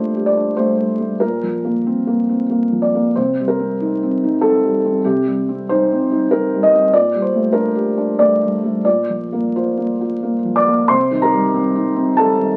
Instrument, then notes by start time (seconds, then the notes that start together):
felt piano
Already playing: A#2 G3 A3 D4 C5 D5
0.16 G4
0.26 D5
0.37 D4
0.57 A3 C5
0.78 G3
0.99 A3
1.20 A#2 A#4
1.43 F3
1.65 A#3
1.87 C4
2.07 A#3
2.29 C4
2.50 A#3
2.72 F3
2.82 D5
2.95 A#3
3.16 C3 C5
3.39 G3
3.48 A#4
3.60 C4
3.81 D#4
4.03 C4
4.24 D#4
4.41 C4 A4
4.64 G3
4.85 C4
5.04 C3 G4
5.26 G3
5.49 C4
5.69 D#4 C5
5.92 C4
6.11 D#4
6.31 C4 A#4
6.54 G3
6.63 D#5
6.74 C4
6.93 A#2 D5
7.14 G3
7.22 C5
7.34 A3
7.53 D4 A#4
7.75 G4
7.98 D4
8.19 A3 D5
8.43 G3
8.64 A3
8.85 A#2 D5
9.10 F3
9.32 A#3
9.56 F4 C5
9.77 A#3
10.01 F4
10.23 A#3
10.45 F3
10.56 D5 D6
10.67 A#3
10.88 C3 C5 C6
11.11 D#3
11.22 A#4 A#5
11.33 G3
11.54 C4
11.76 D#4
11.96 C4
12.17 G3 A4 A5
12.39 D#3